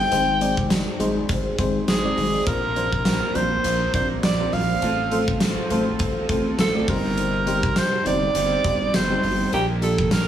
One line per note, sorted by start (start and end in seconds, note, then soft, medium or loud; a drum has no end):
0.00 0.14 G3 medium
0.00 0.11 C4 medium
0.00 0.12 D#4 medium
0.00 0.14 G4 medium
0.00 0.14 A4 medium
0.00 0.12 C5 medium
0.00 0.67 G5 loud
0.11 0.83 G#1 loud
0.11 0.35 G#3 medium
0.11 0.35 C4 medium
0.11 0.35 D#4 medium
0.11 0.36 G#4 medium
0.11 0.36 C5 medium
0.11 closed hi-hat loud
0.41 0.88 G#3 medium
0.41 0.88 C4 medium
0.41 0.89 D#4 medium
0.41 0.89 G#4 medium
0.41 0.89 D5 medium
0.41 closed hi-hat medium
0.57 kick medium
0.70 snare loud
0.70 closed hi-hat medium
0.70 tambourine medium
0.99 1.21 G#1 loud
0.99 1.47 G#3 medium
0.99 1.47 C4 medium
0.99 1.47 D#4 medium
0.99 1.47 G#4 medium
0.99 1.48 C5 loud
0.99 closed hi-hat medium
1.29 1.50 G#1 loud
1.29 kick loud
1.29 closed hi-hat loud
1.58 1.80 G#1 loud
1.58 1.94 G#3 medium
1.58 1.94 C4 medium
1.58 1.94 D#4 medium
1.58 1.94 G#4 medium
1.58 1.94 C5 loud
1.58 kick loud
1.58 closed hi-hat medium
1.88 2.09 G#1 medium
1.88 2.43 G#4 medium
1.88 snare loud
1.88 closed hi-hat medium
1.88 tambourine medium
2.04 2.38 G#3 medium
2.04 2.38 C4 medium
2.04 2.38 D#4 medium
2.04 2.39 G#4 medium
2.04 2.39 D5 medium
2.17 2.39 G#1 loud
2.17 open hi-hat medium
2.46 3.18 A#1 loud
2.46 3.04 A#2 medium
2.46 3.06 F3 medium
2.46 3.06 A#3 loud
2.46 2.70 C4 medium
2.46 2.70 D4 medium
2.46 2.70 F4 medium
2.46 2.71 A#4 medium
2.46 3.37 A#4 loud
2.46 2.71 C5 medium
2.46 kick loud
2.46 closed hi-hat loud
2.76 3.24 C4 medium
2.76 3.24 D4 medium
2.76 3.24 F4 medium
2.76 3.24 A#4 medium
2.76 3.24 C5 medium
2.76 closed hi-hat medium
2.92 kick medium
3.05 3.62 A#2 medium
3.05 3.65 F3 medium
3.05 3.65 A#3 medium
3.05 snare loud
3.05 closed hi-hat medium
3.05 tambourine medium
3.35 3.56 A#1 loud
3.35 3.82 C4 medium
3.35 3.82 D4 medium
3.35 3.83 F4 medium
3.35 3.83 A#4 medium
3.35 3.83 C5 medium
3.35 3.94 C5 loud
3.35 closed hi-hat medium
3.63 3.86 A#1 loud
3.63 4.82 A#2 medium
3.63 4.81 F3 medium
3.63 4.82 A#3 loud
3.63 closed hi-hat loud
3.93 4.15 A#1 loud
3.93 4.29 C4 medium
3.93 4.29 D4 medium
3.93 4.29 F4 medium
3.93 4.29 A#4 medium
3.93 4.08 C5 medium
3.93 4.29 D5 medium
3.93 kick loud
3.93 closed hi-hat medium
4.23 4.44 A#1 loud
4.23 4.55 D5 loud
4.23 snare loud
4.23 closed hi-hat medium
4.23 tambourine medium
4.39 4.73 C4 medium
4.39 4.74 D4 medium
4.39 4.74 F4 medium
4.39 4.74 A#4 medium
4.39 4.74 C5 medium
4.53 4.74 A#1 loud
4.53 5.41 F5 loud
4.53 open hi-hat medium
4.81 5.53 A1 loud
4.81 5.39 F3 medium
4.81 5.06 A3 medium
4.81 5.06 C4 medium
4.81 5.41 C4 medium
4.81 5.06 F4 medium
4.81 5.42 F4 medium
4.81 5.06 A4 medium
4.81 5.06 C5 medium
4.81 closed hi-hat loud
5.11 5.59 A3 medium
5.11 5.59 C4 medium
5.11 5.59 F4 medium
5.11 5.59 A4 medium
5.11 5.59 C5 medium
5.11 closed hi-hat medium
5.28 kick medium
5.40 5.98 F3 medium
5.40 6.00 C4 medium
5.40 6.00 F4 medium
5.40 snare loud
5.40 closed hi-hat medium
5.40 tambourine medium
5.70 5.92 A1 loud
5.70 6.18 A3 loud
5.70 6.18 C4 medium
5.70 6.18 F4 medium
5.70 6.18 A4 medium
5.70 6.18 C5 loud
5.70 closed hi-hat medium
5.99 6.21 A1 loud
5.99 6.56 F3 medium
5.99 6.59 C4 loud
5.99 6.59 F4 loud
5.99 kick loud
5.99 closed hi-hat loud
6.29 6.50 A1 loud
6.29 6.64 A3 loud
6.29 6.65 C4 medium
6.29 6.65 F4 medium
6.29 6.65 A4 medium
6.29 6.65 C5 loud
6.29 kick loud
6.29 closed hi-hat medium
6.58 6.80 A1 loud
6.58 6.88 F3 medium
6.58 6.85 C4 medium
6.58 6.89 F4 medium
6.58 6.87 A4 loud
6.58 snare loud
6.58 closed hi-hat medium
6.58 tambourine medium
6.74 6.88 A3 medium
6.74 6.87 C4 medium
6.74 6.88 F4 medium
6.74 6.88 A4 medium
6.74 6.88 D5 medium
6.87 7.63 G1 loud
6.87 8.33 C3 medium
6.87 7.36 G3 medium
6.87 8.35 G3 medium
6.87 8.34 C4 medium
6.87 7.36 C4 medium
6.87 6.95 D4 medium
6.87 7.36 G4 medium
6.87 7.79 A#4 loud
6.87 7.37 C5 medium
6.87 kick loud
6.87 open hi-hat medium
6.95 7.40 D#4 medium
7.18 closed hi-hat loud
7.46 7.94 G3 medium
7.46 7.94 C4 medium
7.46 7.95 D#4 medium
7.46 7.95 G4 medium
7.46 7.95 C5 loud
7.46 closed hi-hat medium
7.63 kick medium
7.76 8.08 C5 loud
7.76 snare loud
7.76 closed hi-hat medium
7.76 tambourine medium
8.05 8.27 G1 loud
8.05 8.53 G3 medium
8.05 8.53 C4 medium
8.05 8.53 D#4 medium
8.05 8.53 G4 medium
8.05 8.54 C5 medium
8.05 8.97 D5 loud
8.05 closed hi-hat medium
8.34 8.56 G1 loud
8.34 8.92 C3 medium
8.34 8.94 G3 medium
8.34 8.94 C4 medium
8.34 closed hi-hat loud
8.63 8.86 G1 loud
8.63 8.99 G3 medium
8.63 8.99 C4 medium
8.63 9.00 D#4 medium
8.63 9.00 G4 medium
8.63 9.00 C5 medium
8.63 kick loud
8.63 closed hi-hat medium
8.93 9.15 G1 medium
8.93 9.52 C3 medium
8.93 9.53 G3 medium
8.93 9.54 C4 medium
8.93 9.53 C5 loud
8.93 snare loud
8.93 closed hi-hat medium
8.93 tambourine medium
9.09 9.44 G3 medium
9.09 9.44 C4 medium
9.09 9.44 D#4 medium
9.09 9.44 G4 medium
9.09 9.45 C5 medium
9.23 9.45 G1 loud
9.23 open hi-hat medium
9.52 10.24 A#1 loud
9.52 10.10 A#2 medium
9.52 10.12 F3 medium
9.52 9.76 A#3 medium
9.52 10.13 A#3 medium
9.52 9.76 D4 medium
9.52 9.77 F4 medium
9.52 9.77 G4 medium
9.52 9.67 G4 loud
9.52 9.77 A#4 medium
9.52 closed hi-hat loud
9.81 10.28 A#3 medium
9.81 10.28 D4 medium
9.81 10.28 F4 medium
9.81 10.28 G4 medium
9.81 10.28 A4 medium
9.81 10.14 A4 medium
9.81 closed hi-hat medium
9.98 kick medium
10.11 10.28 A#2 medium
10.11 10.28 F3 medium
10.11 10.28 A#3 medium
10.11 10.28 A#4 loud
10.11 snare loud
10.11 closed hi-hat medium
10.11 tambourine medium